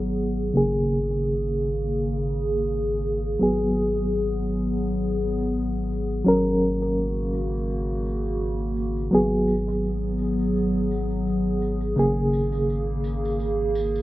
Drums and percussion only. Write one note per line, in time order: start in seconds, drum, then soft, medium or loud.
0.18 tambourine medium
0.38 tambourine soft
0.55 tambourine soft
0.91 tambourine medium
1.10 tambourine soft
1.27 tambourine soft
1.62 tambourine medium
1.82 tambourine soft
1.98 tambourine soft
2.33 tambourine medium
2.53 tambourine soft
2.69 tambourine soft
3.04 tambourine medium
3.24 tambourine soft
3.40 tambourine soft
3.75 tambourine medium
3.96 tambourine soft
4.11 tambourine soft
4.47 tambourine medium
4.65 tambourine soft
4.82 tambourine soft
5.19 tambourine medium
5.38 tambourine soft
5.55 tambourine soft
5.90 tambourine medium
6.10 tambourine soft
6.26 tambourine soft
6.62 tambourine medium
6.81 tambourine soft
6.97 tambourine soft
7.34 tambourine medium
7.53 tambourine soft
7.69 tambourine soft
8.05 tambourine medium
8.25 tambourine soft
8.41 tambourine soft
8.77 tambourine medium
8.97 tambourine soft
9.14 tambourine soft
9.48 tambourine medium
9.69 tambourine soft
9.84 tambourine soft
10.19 tambourine medium
10.39 tambourine soft
10.55 tambourine soft
10.91 tambourine medium
11.10 tambourine soft
11.27 tambourine soft
11.62 tambourine medium
11.81 tambourine soft
11.98 tambourine soft
12.33 tambourine medium
12.52 tambourine soft
12.69 tambourine soft
13.04 tambourine medium
13.25 tambourine soft
13.40 tambourine soft
13.75 tambourine medium
13.95 tambourine soft